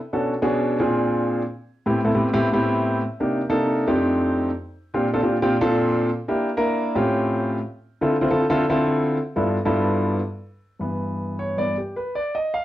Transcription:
0.13 0.33 B2 medium
0.13 0.33 C#4 medium
0.13 0.33 D4 medium
0.13 0.33 F#4 medium
0.13 0.33 A4 medium
0.42 0.80 B2 medium
0.42 0.80 C#4 medium
0.42 0.78 D4 medium
0.42 0.80 F#4 medium
0.42 0.78 G#4 loud
0.80 1.41 A#2 medium
0.80 1.41 C4 medium
0.80 1.41 D4 medium
0.80 1.41 F4 medium
0.80 1.41 G#4 medium
1.86 1.99 A2 medium
1.86 2.00 B3 medium
1.86 2.00 C4 medium
1.86 2.00 E4 medium
1.86 2.00 G4 medium
2.05 2.12 A2 medium
2.05 2.12 B3 medium
2.05 2.11 C4 medium
2.05 2.12 E4 medium
2.05 2.12 A4 medium
2.15 2.28 A2 medium
2.15 2.28 B3 medium
2.15 2.28 C4 medium
2.15 2.28 E4 medium
2.15 2.28 G4 medium
2.33 2.47 A2 loud
2.33 2.47 B3 medium
2.33 2.47 C4 medium
2.33 2.47 E4 medium
2.33 2.47 G4 loud
2.53 3.00 A2 medium
2.53 3.00 B3 medium
2.53 3.00 C4 medium
2.53 3.00 E4 medium
2.53 3.00 G4 loud
3.20 3.40 C3 medium
3.20 3.40 A#3 medium
3.20 3.40 D4 medium
3.20 3.41 D#4 medium
3.20 3.41 G4 medium
3.49 3.88 C3 medium
3.49 3.88 A#3 medium
3.49 3.86 D4 medium
3.49 3.86 D#4 medium
3.49 3.88 A4 loud
3.88 4.49 F2 medium
3.88 4.49 A3 medium
3.88 4.49 C4 medium
3.88 4.49 D4 medium
3.88 4.49 D#4 medium
3.88 4.49 G4 loud
4.94 5.07 A#2 medium
4.94 5.07 C4 medium
4.94 5.07 D4 medium
4.94 5.07 F4 medium
4.94 5.07 G4 medium
5.13 5.20 A#2 medium
5.13 5.20 C4 medium
5.13 5.20 D4 medium
5.13 5.20 F4 medium
5.13 5.20 A4 loud
5.23 5.36 A#2 medium
5.23 5.36 C4 medium
5.23 5.36 D4 medium
5.23 5.36 F4 medium
5.23 5.36 G4 medium
5.42 5.55 A#2 medium
5.42 5.55 C4 medium
5.42 5.55 D4 medium
5.42 5.55 F4 medium
5.42 5.55 G4 loud
5.61 6.08 A#2 loud
5.61 6.08 C4 medium
5.61 6.08 D4 medium
5.61 6.08 F4 medium
5.61 6.08 A4 loud
6.28 6.48 A#3 medium
6.28 6.48 D4 medium
6.28 6.49 E4 medium
6.28 6.49 G4 medium
6.57 6.96 A#3 medium
6.57 6.96 D4 medium
6.57 6.96 E4 medium
6.57 6.96 A#4 loud
6.95 7.57 A2 medium
6.95 7.57 C4 medium
6.95 7.57 C#4 medium
6.95 7.57 F4 medium
6.95 7.57 G4 medium
8.01 8.15 D3 medium
8.01 8.15 C4 medium
8.01 8.15 E4 medium
8.01 8.15 F4 medium
8.01 8.15 A4 medium
8.21 8.28 D3 medium
8.21 8.28 C4 medium
8.21 8.28 E4 medium
8.21 8.28 F4 medium
8.21 8.28 C5 medium
8.30 8.44 D3 medium
8.30 8.44 C4 medium
8.30 8.44 E4 medium
8.30 8.44 F4 medium
8.30 8.44 A4 loud
8.50 8.63 D3 loud
8.50 8.63 C4 medium
8.50 8.63 E4 medium
8.50 8.63 F4 medium
8.50 8.63 A4 loud
8.69 9.16 D3 medium
8.69 9.16 C4 medium
8.69 9.16 E4 medium
8.69 9.16 F4 medium
8.69 9.16 A4 loud
9.36 9.56 G2 medium
9.36 9.56 B3 medium
9.36 9.56 D4 medium
9.36 9.56 E4 medium
9.36 9.56 F4 medium
9.36 9.56 A4 medium
9.65 10.19 G2 medium
9.65 10.19 B3 medium
9.65 10.19 D4 medium
9.65 10.19 E4 medium
9.65 10.19 F4 medium
9.65 10.19 A4 medium
10.80 11.56 G2 soft
10.80 11.57 E3 soft
10.80 11.57 B3 medium
11.39 11.57 C#5 medium
11.58 11.75 G2 soft
11.58 11.75 E3 soft
11.58 11.75 B3 medium
11.58 11.76 D5 medium
11.78 11.96 G4 medium
11.96 12.15 B4 medium
12.15 12.34 D5 medium
12.35 12.53 D#5 medium
12.54 12.65 F5 medium

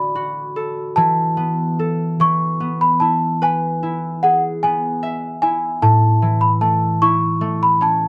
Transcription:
0.00 1.00 D3 medium
0.00 2.29 A3 medium
0.00 0.78 E4 medium
0.00 0.15 F#4 medium
0.00 1.60 D5 medium
0.00 0.91 B5 medium
0.15 2.59 F#4 medium
0.56 1.79 A4 soft
0.96 2.19 E3 medium
0.96 2.14 A5 medium
1.37 2.60 B3 medium
1.79 3.99 A4 soft
2.20 5.88 E3 medium
2.20 2.77 C#6 medium
2.60 4.63 B3 soft
2.81 3.02 B5 medium
3.00 3.82 E4 soft
3.00 3.42 A5 medium
3.42 5.47 B4 medium
3.42 4.26 G#5 medium
3.83 5.42 E4 soft
4.23 5.88 G#4 soft
4.23 4.41 F#5 medium
4.63 7.74 B3 medium
4.63 5.41 G#5 medium
5.03 6.75 E5 medium
5.42 7.02 E4 medium
5.42 5.80 G#5 medium
5.82 8.08 A2 medium
5.82 6.44 A5 medium
6.22 8.08 E3 medium
6.41 6.50 B5 medium
6.61 7.41 A3 soft
6.61 7.03 A5 medium
7.02 8.08 E4 medium
7.02 7.63 C#6 medium
7.41 8.08 A3 medium
7.63 7.81 B5 medium
7.81 8.08 C#4 medium
7.81 8.08 A5 medium

